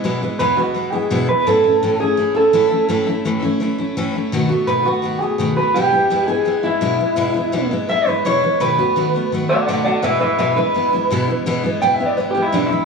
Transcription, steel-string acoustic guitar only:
\new Staff \with { instrumentName = "Steel-string acoustic guitar" } { \time 4/4 \key e \major \tempo 4 = 168 <e, b, e gis b e'>8 <e gis b e'>8 <e, b, e gis b e'>8 <e gis b e'>8 <e gis b e'>8 <e gis b e'>8 <e, b, e gis b e'>8 <e gis b e'>8 | <a, e a cis' e'>8 <a cis' e'>8 <a, e a cis' e'>8 <a cis' e'>8 <e a cis' e'>8 <a cis' e'>8 <a, e a cis' e'>8 <a cis' e'>8 | <a, e a cis' e'>8 <a cis' e'>8 <a, e a cis' e'>8 <a cis' e'>8 <e a cis' e'>8 <a cis' e'>8 <a, e a cis' e'>8 <a cis' e'>8 | <b, dis a b fis'>8 <a b fis'>8 <b, dis a b fis'>8 <a b fis'>8 <dis a b fis'>8 <a b fis'>8 <b, dis a b fis'>8 <a b fis'>8 |
<e, b, e gis b e'>8 <e gis b e'>8 <e, b, e gis b e'>8 <e gis b e'>8 <e gis b e'>8 <e gis b e'>8 <e, b, e gis b e'>8 <e gis b e'>8 | <e, b, e gis b e'>8 <e gis b e'>8 <e, b, e gis b e'>8 <e gis b e'>8 <e gis b e'>8 <e gis b e'>8 <e, b, e gis b e'>8 <e gis b e'>8 | <b, dis a b fis'>8 <a b fis'>8 <b, dis a b fis'>8 <a b fis'>8 <dis a b fis'>8 <a b fis'>8 <b, dis a b fis'>8 <a b fis'>8 | <e, b, e gis b e'>8 <e gis b e'>8 <e, b, e gis b e'>8 <e gis b e'>8 <e gis b e'>8 <e gis b e'>8 <e, b, e gis b e'>8 <e gis b e'>8 |
<e, b, e gis b e'>8 <e gis b e'>8 <e, b, e gis b e'>8 <e gis b e'>8 <e gis b e'>8 <e gis b e'>8 <e, b, e gis b e'>8 <e gis b e'>8 | }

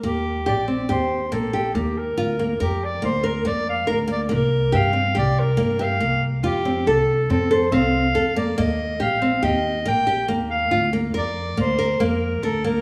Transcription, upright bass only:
\new Staff \with { instrumentName = "Upright bass" } { \clef bass \time 5/4 \key ees \lydian \tempo 4 = 140 ees,4 bes,,4 ees,4 bes,,4 ees,4 | d,4 f,4 d,4 f,4 d,4 | c,4 g,4 c,4 g,4 c,4 | f,4 c,4 f,4 c,4 f,4 |
ees,4 bes,,4 ees,4 bes,,4 ees,4 | d,4 f,4 d,4 f,4 d,4 | }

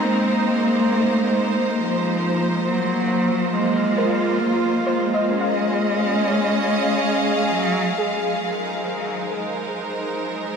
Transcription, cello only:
\new Staff \with { instrumentName = "Cello" } { \clef bass \time 3/4 \key aes \mixolydian \tempo 4 = 68 bes2 f4 | ges4 aes4 bes8 aes8~ | aes2~ aes8 ges8 | f4 ees4 f4 | }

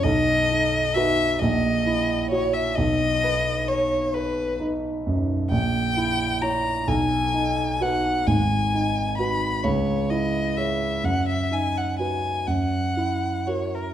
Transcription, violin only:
\new Staff \with { instrumentName = "Violin" } { \time 6/8 \key b \major \tempo 4. = 44 dis''4 e''8 dis''4 cis''16 e''16 | dis''4 cis''8 b'8 r4 | g''4 ais''8 gis''4 fis''8 | gis''4 b''8 cis''8 dis''8 e''8 |
fis''16 e''16 gis''16 fis''16 gis''8 fis''4 cis''16 ais'16 | }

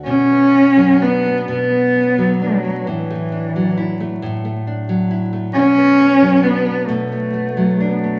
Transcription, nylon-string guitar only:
\new Staff \with { instrumentName = "Nylon-string guitar" } { \time 6/8 \key b \minor \tempo 4. = 44 b,16 b16 cis'16 fis16 d'16 b16 b,16 b16 cis'16 fis16 d'16 b16 | a,16 a16 d'16 fis16 e'16 a16 a,16 a16 d'16 fis16 e'16 a16 | b,16 b16 a16 fis16 d'16 b16 b,16 b16 a16 fis16 d'16 b16 | }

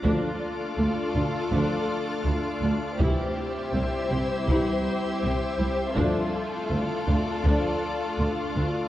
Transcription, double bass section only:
\new Staff \with { instrumentName = "Double bass section" } { \clef bass \time 4/4 \key d \minor \tempo 4 = 81 d,8 r8 d,8 d,8 d,8 r8 d,8 d,8 | c,8 r8 c,8 c,8 c,8 r8 c,8 c,8 | d,8 r8 d,8 d,8 d,8 r8 d,8 d,8 | }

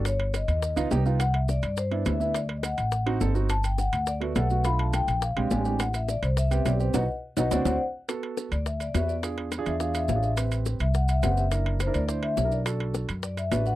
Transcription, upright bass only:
\new Staff \with { instrumentName = "Upright bass" } { \clef bass \time 4/4 \key g \major \tempo 4 = 210 g,,4. dis,4 cis,8 c,4~ | c,4. g,4. d,4~ | d,4. a,,4. g,,4~ | g,,4. d,4. b,,4~ |
b,,4. ais,,4 ais,,8 a,,4~ | a,,4. c,4. b,,4 | b,,8 r4 b,,8 d,8 d,8 r4 | \key d \mixolydian r4. d,4. e,4~ |
e,4. e,4. a,,4~ | a,,4. c,4. fis,,4~ | fis,,4. d,4. b,,4~ | b,,4. fis,4. a,,4 | }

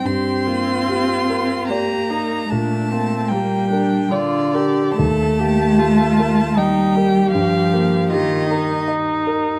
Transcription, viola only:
\new Staff \with { instrumentName = "Viola" } { \time 3/4 \key g \minor \tempo 4 = 76 g'8 f'4. g'8 ees'8 | d'8 c'8 bes8 d'8 f'8 g'8 | a'8 g'8 f'4 ees'8 g'8~ | g'4 f'8 ees'4. | }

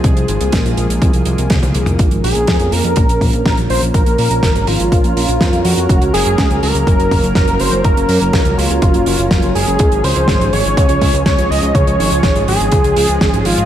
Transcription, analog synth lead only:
\new Staff \with { instrumentName = "Analog synth lead" } { \time 4/4 \key bes \minor \tempo 4 = 123 r1 | r8 aes'4 bes'4. bes'8 c''8 | bes'4. f'2 ges'8~ | ges'8 aes'4 bes'4. bes'8 c''8 |
bes'4. f'2 aes'8~ | aes'8 c''4 des''4. des''8 ees''8 | des''4. aes'2 f'8 | }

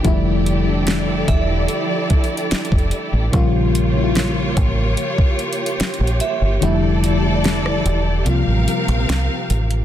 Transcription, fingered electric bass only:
\new Staff \with { instrumentName = "Fingered electric bass" } { \clef bass \time 4/4 \key f \major \tempo 4 = 73 f,,4. e,,8 r4 r16 f,,16 r16 a,,16 | bes,,4. a,,8 r4 r16 bes,,16 r16 g,,16 | f,,4. e,,8 c,16 a,,16 r16 bes,,16 c,16 r16 a,,8 | }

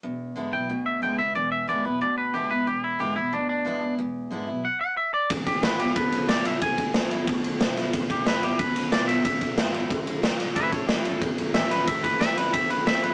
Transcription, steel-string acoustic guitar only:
\new Staff \with { instrumentName = "Steel-string acoustic guitar" } { \time 4/4 \key e \mixolydian \tempo 4 = 182 << { r4 <d gis b e'>8 <b e'>8 r4 <d gis b e'>8 <b e'>8 | r4 <d gis b e'>8 <b e'>8 r4 <d gis b e'>8 <b e'>8 | r4 <d gis b e'>8 <b e'>8 r4 <d gis b e'>8 <b e'>8 | r4 <d gis b e'>8 <b e'>8 r2 |
r4 <d gis b e'>8 <b e'>8 r4 <d gis b e'>8 <b e'>8 | r4 <d gis b e'>8 <b e'>8 r4 <d gis b e'>8 <b e'>8 | r4 <d gis b e'>8 <b e'>8 r4 <d gis b e'>8 <b e'>8 | r4 <d gis b e'>8 <b e'>8 r2 |
r4 <e g cis' e'>8 <cis' e'>8 r4 <e g cis' e'>8 <cis' e'>8 | r4 <e g c' e'>8 <c' e'>8 r4 <e g c' e'>8 <c' e'>8 | } \\ { e,2 b,2 | e,2 b,2 | e,2 b,2 | e,2 r2 |
e,2 b,2 | e,2 b,2 | e,2 b,2 | e,2 fis,4 gis,4 |
a,2 e,2 | a,2 e,2 | } >> }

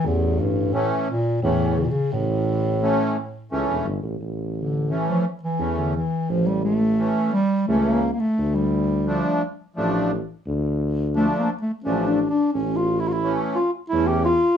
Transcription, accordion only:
\new Staff \with { instrumentName = "Accordion" } { \time 3/4 \tempo 4 = 86 r4 <e a cis'>8 r8 <e a cis'>8 r8 | r4 <e a cis'>8 r8 <e a cis'>8 r8 | r4 <e a cis'>8 r8 <e a cis'>8 r8 | r4 <e a cis'>8 r8 <e a cis'>8 r8 |
r4 <f a d'>8 r8 <f a d'>8 r8 | r4 <f a d'>8 r8 <f a d'>8 r8 | r4 <e a cis'>8 r8 <e a cis'>8 r8 | }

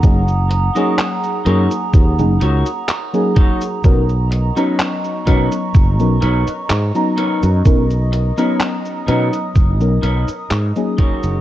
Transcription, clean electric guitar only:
\new Staff \with { instrumentName = "Clean electric guitar" } { \time 4/4 \key b \lydian \tempo 4 = 63 r8. <dis' fis' ais' cis''>16 r8 <dis' fis' ais' cis''>16 r8. <dis' fis' ais' cis''>16 r8. <dis' fis' ais' cis''>16 r16 | r8. <dis' ais' b' cis''>16 r8 <dis' ais' b' cis''>16 r8. <dis' ais' b' cis''>16 r8. <dis' ais' b' cis''>16 r16 | r8. <dis' ais' b' cis''>16 r8 <dis' ais' b' cis''>16 r8. <dis' ais' b' cis''>16 r8. <dis' fis' ais' cis''>8 | }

